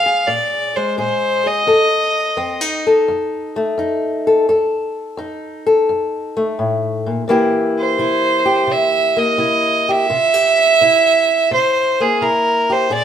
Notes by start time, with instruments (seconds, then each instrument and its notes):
Already playing: steel-string acoustic guitar A#2 G#3, fiddle F5
0.06 steel-string acoustic guitar G#4
0.27 steel-string acoustic guitar A#2, fiddle D5
0.76 steel-string acoustic guitar G#3, fiddle C5
0.98 steel-string acoustic guitar A#2 G#4, fiddle C5
1.46 steel-string acoustic guitar G#4, fiddle D#5
1.67 steel-string acoustic guitar F2 A4
2.37 steel-string acoustic guitar F2 C4
2.61 steel-string acoustic guitar D#4
2.87 steel-string acoustic guitar A4
3.08 steel-string acoustic guitar F2
3.56 steel-string acoustic guitar A3
3.78 steel-string acoustic guitar F2 D#4
4.27 steel-string acoustic guitar A4
4.49 steel-string acoustic guitar F2 A4
5.17 steel-string acoustic guitar F2 D#4
5.67 steel-string acoustic guitar A4
5.89 steel-string acoustic guitar F2
6.37 steel-string acoustic guitar A3
6.59 steel-string acoustic guitar A2
7.06 steel-string acoustic guitar A#2
7.28 steel-string acoustic guitar C3 E3 A#3 E4 G4
7.79 fiddle C5
7.98 steel-string acoustic guitar C3 E4
8.46 steel-string acoustic guitar G4
8.67 steel-string acoustic guitar C3
8.72 fiddle E5
9.17 steel-string acoustic guitar A#3, fiddle D#5
9.38 steel-string acoustic guitar C3 E4
9.89 steel-string acoustic guitar G4, fiddle E5
10.10 steel-string acoustic guitar C3 F4
10.34 steel-string acoustic guitar G4
10.81 steel-string acoustic guitar C3 E4
11.51 steel-string acoustic guitar C3, fiddle C5
12.00 steel-string acoustic guitar A#3, fiddle G#4
12.21 steel-string acoustic guitar C3 E4, fiddle A#4
12.70 steel-string acoustic guitar G4, fiddle C5
12.90 steel-string acoustic guitar A#2 G#4, fiddle D5